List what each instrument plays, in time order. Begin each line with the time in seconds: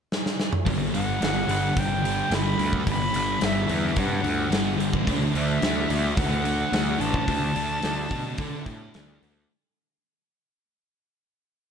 0.12 snare
0.26 snare
0.40 snare
0.53 mid tom
0.65 picked electric bass G1, distorted electric guitar G2 D3 G3, kick, open hi-hat
0.92 picked electric bass G1, distorted electric guitar D3 G3, flute F#5, open hi-hat
1.20 picked electric bass G1, distorted electric guitar G2 D3 G3, snare, open hi-hat
1.47 picked electric bass G1, distorted electric guitar D3 G3, open hi-hat
1.75 picked electric bass G1, distorted electric guitar G2 D3 G3, flute G5, kick, open hi-hat
2.02 distorted electric guitar D3 G3, open hi-hat
2.28 picked electric bass G1, distorted electric guitar G2 D3 G3, snare, open hi-hat
2.35 flute B5
2.56 picked electric bass D2, distorted electric guitar D3 G3, open hi-hat
2.73 kick
2.84 picked electric bass G1, distorted electric guitar G2 D3 G3, kick, open hi-hat
2.89 flute B5
3.13 picked electric bass G1, distorted electric guitar D3 G3, open hi-hat
3.39 picked electric bass G1, distorted electric guitar G2 D3 G3, snare, open hi-hat
3.45 flute E5
3.66 picked electric bass E2, distorted electric guitar D3 G3, open hi-hat
3.94 distorted electric guitar G2 D3 G3, picked electric bass G2, kick, open hi-hat
3.99 flute F#5
4.21 picked electric bass D2, distorted electric guitar D3 G3, open hi-hat
4.51 picked electric bass G1, distorted electric guitar G2 D3 G3, snare, open hi-hat
4.77 picked electric bass G1, distorted electric guitar D3 G3, open hi-hat
4.93 kick
5.05 picked electric bass D2, distorted electric guitar D3 A3 D4, kick, open hi-hat
5.33 picked electric bass D2, distorted electric guitar A3 D4, flute E5, open hi-hat
5.61 picked electric bass D2, distorted electric guitar D3 A3 D4, snare, open hi-hat
5.89 picked electric bass D2, distorted electric guitar A3 D4, open hi-hat
6.16 picked electric bass D2, distorted electric guitar D3 A3 D4, flute F#5, kick, open hi-hat
6.44 distorted electric guitar A3 D4, open hi-hat
6.70 picked electric bass D2, distorted electric guitar D3 A3 D4, snare, open hi-hat
6.98 picked electric bass A1, distorted electric guitar A3 D4, flute A5, open hi-hat
7.14 kick
7.26 picked electric bass D2, distorted electric guitar D3 A3 D4, kick, open hi-hat
7.53 picked electric bass D2, distorted electric guitar A3 D4, open hi-hat
7.80 picked electric bass D2, distorted electric guitar D3 A3 D4, snare, open hi-hat
8.09 picked electric bass B2, distorted electric guitar A3 D4, kick, open hi-hat
8.37 distorted electric guitar D3 A3 D4, picked electric bass D3, kick, open hi-hat
8.66 picked electric bass A2, distorted electric guitar A3 D4, kick, open hi-hat
8.93 picked electric bass D2, distorted electric guitar D3 A3 D4, snare, open hi-hat
9.22 picked electric bass D2, distorted electric guitar A3 D4, open hi-hat